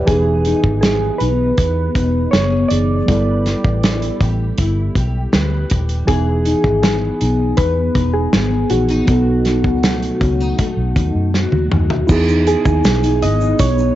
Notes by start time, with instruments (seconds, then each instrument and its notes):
Already playing: steel-string acoustic guitar E4 B4, tine electric piano G4 B4 D5
0.05 fingered electric bass E1, tine electric piano E3 B3 D#4, steel-string acoustic guitar E3, synth keys G#4, kick, closed hi-hat
0.09 steel-string acoustic guitar G#4, tine electric piano G#4
0.45 steel-string acoustic guitar D#4, closed hi-hat
0.64 fingered electric bass G#1, kick
0.81 steel-string acoustic guitar B3, synth keys G#4, snare, closed hi-hat
1.18 fingered electric bass B1, steel-string acoustic guitar D#4, synth keys B4, closed hi-hat
1.57 fingered electric bass E2, steel-string acoustic guitar B3, kick, closed hi-hat
1.95 fingered electric bass E1, steel-string acoustic guitar D#4, kick, closed hi-hat
2.31 fingered electric bass F#1, steel-string acoustic guitar G#4, synth keys C#5, snare, closed hi-hat
2.68 fingered electric bass F#1, tine electric piano E3 B3 D#4, steel-string acoustic guitar D#4, synth keys D5, closed hi-hat
2.73 tine electric piano G#4
3.06 fingered electric bass G1, tine electric piano G3 B3 E4, steel-string acoustic guitar G3 B4, kick, closed hi-hat
3.11 tine electric piano A4
3.46 steel-string acoustic guitar G4, snare, closed hi-hat
3.64 fingered electric bass A1, kick
3.83 steel-string acoustic guitar E4, snare, closed hi-hat
4.02 closed hi-hat
4.21 fingered electric bass A1, steel-string acoustic guitar G4, kick, closed hi-hat
4.58 fingered electric bass G1, steel-string acoustic guitar E4, kick, closed hi-hat
4.95 fingered electric bass B1, steel-string acoustic guitar G4, kick, closed hi-hat
5.32 fingered electric bass D2, steel-string acoustic guitar B4, snare, closed hi-hat
5.70 fingered electric bass D#1, steel-string acoustic guitar G4, kick, closed hi-hat
5.89 closed hi-hat
6.05 fingered electric bass E1, tine electric piano E3 B3 D#4, steel-string acoustic guitar E3 G#4, synth keys G#4, kick, closed hi-hat
6.11 tine electric piano G#4
6.45 steel-string acoustic guitar D#4, closed hi-hat
6.64 fingered electric bass G#1, kick
6.83 steel-string acoustic guitar B3, synth keys G#4, snare, closed hi-hat
7.21 fingered electric bass B1, steel-string acoustic guitar D#4, closed hi-hat
7.57 fingered electric bass E2, steel-string acoustic guitar B3, synth keys B4, kick, closed hi-hat
7.95 fingered electric bass E1, steel-string acoustic guitar D#4, kick, closed hi-hat
8.14 synth keys G#4
8.33 fingered electric bass G#1, steel-string acoustic guitar G#4, snare, closed hi-hat
8.70 fingered electric bass A#1, tine electric piano E3 B3 D#4 G#4, steel-string acoustic guitar C#4, synth keys F#4, closed hi-hat
8.89 steel-string acoustic guitar D#4, closed hi-hat
9.06 fingered electric bass B1, steel-string acoustic guitar B2 F#4, tine electric piano F#3 B3 D#4, kick, closed hi-hat
9.11 tine electric piano A4
9.45 steel-string acoustic guitar D#4, snare, closed hi-hat
9.64 fingered electric bass C#2, kick
9.83 steel-string acoustic guitar A3, snare, closed hi-hat
10.02 closed hi-hat
10.21 fingered electric bass C#2, steel-string acoustic guitar C#4, kick, closed hi-hat
10.40 steel-string acoustic guitar D#4
10.59 steel-string acoustic guitar A3, kick, closed hi-hat
10.77 fingered electric bass B1
10.96 fingered electric bass D#2, steel-string acoustic guitar D#4, kick, closed hi-hat
11.15 fingered electric bass F#2
11.34 steel-string acoustic guitar F#4, snare
11.52 fingered electric bass D#2, high tom
11.72 fingered electric bass D#2, steel-string acoustic guitar D#4, mid tom
11.90 floor tom
12.07 fingered electric bass E2, steel-string acoustic guitar E3, tine electric piano B3 D#4 E4, kick, crash, shaker
12.12 tine electric piano G#4
12.29 steel-string acoustic guitar D#4, shaker
12.47 synth keys G#4, steel-string acoustic guitar G#4, closed hi-hat, shaker
12.65 fingered electric bass D#2, steel-string acoustic guitar D#4, kick, shaker
12.84 fingered electric bass B1, steel-string acoustic guitar G#4, snare, closed hi-hat, shaker
13.03 steel-string acoustic guitar D#4, closed hi-hat, shaker
13.22 fingered electric bass G#1, steel-string acoustic guitar B3, synth keys D#5, closed hi-hat
13.41 steel-string acoustic guitar D#4, shaker
13.59 fingered electric bass B1, synth keys C#5, kick, closed hi-hat, shaker
13.78 steel-string acoustic guitar D#4, shaker